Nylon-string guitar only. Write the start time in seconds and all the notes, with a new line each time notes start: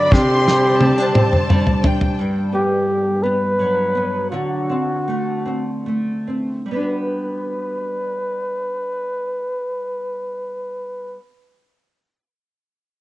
Already playing: G2 F#3 D4
0.11 C3
0.46 G3
0.80 C4
0.98 D4
1.16 C4
1.49 G3
1.84 D4
2.19 G2
2.53 B3
3.24 B3
3.59 F#3
3.95 B3
4.32 D3
4.70 C4
5.08 A3
5.46 C4
5.86 A3
6.27 C4
6.66 G3
6.71 B3
6.76 D4 F#4